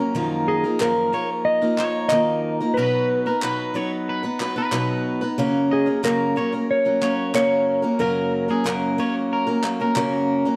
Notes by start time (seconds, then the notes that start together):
Already playing: A#4
0.00 F#3 A#3 C#4
0.15 F#2 D#3 F3 A#3 D#4 A#4
0.48 G#4 D#5
0.64 F3 A#3 D#4 A#4
0.80 F#2 D#3 F3 A#3 D#4 A#4, clap
1.13 F3 A#3 D#4 A#4 C#5
1.45 D#5
1.62 F3 A#3 D#4 A#4
1.78 F3 A#3 D#4 A#4 C#5, clap
2.09 F#2 D#3 F3 A#3 D#4 D#5, clap
2.13 A#4
2.61 F3 A#3 D#4 A#4
2.74 B2 B4
2.78 F#3 B3 D#4 B4
3.26 B3 D#4 A#4 B4
3.42 B2 F#3 B3 D#4 B4, clap
3.74 F#3 B3 D#4 B4 C#5
4.09 B4
4.23 B3 D#4 B4
4.40 F#3 B3 D#4 B4, clap
4.56 B3 D#4 B4
4.72 B2 F#3 B3 D#4 B4, clap
5.21 B3 D#4 B4
5.38 F#2 C#3 F#3 A#3 C#4 A#4
5.71 G#4 D#5
5.86 F#3 A#3 C#4 A#4
6.03 F#2 C#3 F#3 A#3 C#4 A#4, clap
6.36 F#3 A#3 C#4 A#4 C#5
6.52 F#3 A#3 C#4 A#4
6.71 C#5
6.85 F#3 A#3 C#4 A#4
7.01 F#3 A#3 C#4 A#4 C#5, clap
7.34 F#2 C#3 F#3 A#3 C#4 A#4 C#5, clap
7.82 F#3 A#3 C#4 A#4
7.99 F#2 C#3 F#3 A#3 C#4 A#4
8.48 F#3 A#3 C#4 G#4 A#4
8.64 F#2 C#3 F#3 A#3 C#4 A#4, clap
8.98 F#3 A#3 C#4 A#4 C#5
9.33 A#4
9.47 F#3 A#3 C#4 A#4
9.63 F#3 A#3 C#4 A#4, clap
9.80 F#3 A#3 C#4 A#4
9.95 F#2 C#3 F#3 A#3 C#4 A#4, clap
10.45 F#3 A#3 C#4 A#4